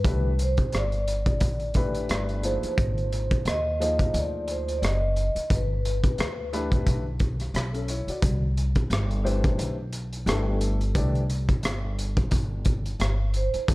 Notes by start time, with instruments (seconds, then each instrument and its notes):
Already playing: vibraphone B4
0.04 upright bass C2, upright piano E3 A3 D4 G4 B4, kick, closed hi-hat
0.39 vibraphone C5, closed hi-hat
0.57 kick, closed hi-hat
0.72 upright bass G1, cross-stick, closed hi-hat
0.77 vibraphone D5
0.92 closed hi-hat
1.08 closed hi-hat
1.26 kick, closed hi-hat
1.40 upright bass A1, kick, closed hi-hat
1.60 closed hi-hat
1.74 upright piano E3 A3 D4 G4 B4, kick, closed hi-hat
1.95 closed hi-hat
2.09 upright bass G1, cross-stick, closed hi-hat
2.29 closed hi-hat
2.43 upright piano F3 A#3 D#4 G#4 C5, vibraphone C5, closed hi-hat
2.63 muted upright bass stroke, closed hi-hat
2.78 upright bass G#1, kick, closed hi-hat
2.98 closed hi-hat
3.12 closed hi-hat
3.31 kick, closed hi-hat
3.45 upright bass D#2, vibraphone D#5, cross-stick, closed hi-hat
3.80 upright piano F3 A#3 D#4 G#4 C5, vibraphone D#5, closed hi-hat
3.99 kick, closed hi-hat
4.14 upright bass D2, vibraphone D5, closed hi-hat
4.48 vibraphone C5, closed hi-hat
4.68 closed hi-hat
4.79 upright bass F#1, vibraphone D5
4.83 vibraphone D#5, cross-stick, closed hi-hat
5.16 closed hi-hat
5.35 muted upright bass stroke, closed hi-hat
5.50 upright bass G1, vibraphone B4, kick, closed hi-hat
5.85 closed hi-hat
6.04 muted upright bass stroke, kick, closed hi-hat
6.18 upright bass D2, cross-stick, closed hi-hat
6.53 upright piano E3 A3 D4 G4 B4, closed hi-hat
6.72 kick, closed hi-hat
6.86 upright bass B1, kick, closed hi-hat
7.20 kick, closed hi-hat
7.40 cross-stick, closed hi-hat
7.54 upright bass B1, cross-stick, closed hi-hat
7.73 upright piano C#4 A4, closed hi-hat
7.88 upright piano E4 C#5, closed hi-hat
8.07 upright piano F#4 D5, muted upright bass stroke, closed hi-hat
8.22 upright bass C2, kick, closed hi-hat
8.57 closed hi-hat
8.75 kick, closed hi-hat
8.90 upright bass G1, cross-stick, closed hi-hat
9.11 closed hi-hat
9.24 upright piano E3 A3 D4 G4 C5, closed hi-hat
9.44 kick, closed hi-hat
9.58 upright bass B1, closed hi-hat
9.93 closed hi-hat
10.13 closed hi-hat
10.26 upright bass G1, upright piano E3 A3 D4 G4 A4, cross-stick, closed hi-hat
10.61 closed hi-hat
10.81 closed hi-hat
10.95 upright bass C2, upright piano E3 A3 D4 G4 D5, kick, closed hi-hat
11.15 closed hi-hat
11.30 closed hi-hat
11.49 kick, closed hi-hat
11.63 upright bass G1, cross-stick, closed hi-hat
11.99 closed hi-hat
12.17 kick, closed hi-hat
12.31 upright bass G1, kick, closed hi-hat
12.65 kick, closed hi-hat
12.86 closed hi-hat
12.99 upright bass G1, cross-stick, closed hi-hat
13.34 vibraphone C5, closed hi-hat
13.54 muted upright bass stroke, closed hi-hat
13.68 upright bass G#1, upright piano F3 A#3 D#4 G#4 C5, kick, closed hi-hat